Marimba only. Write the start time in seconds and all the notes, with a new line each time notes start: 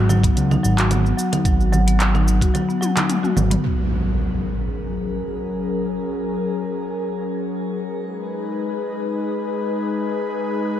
0.09 F#3
0.24 B3
0.36 F#3
0.51 D#4
0.63 F#3
0.78 F#4
0.91 B3
1.05 B3
1.18 F#3
1.33 D#4
1.45 F#3
1.60 F#4
1.72 F#3
1.87 B3
1.99 F#3
2.14 D#4
2.27 F#3
2.41 F#4
2.54 F#3
2.69 B3
2.81 F#3
2.96 D#4
3.09 F#3
3.23 F#4
3.36 F#3
3.51 B3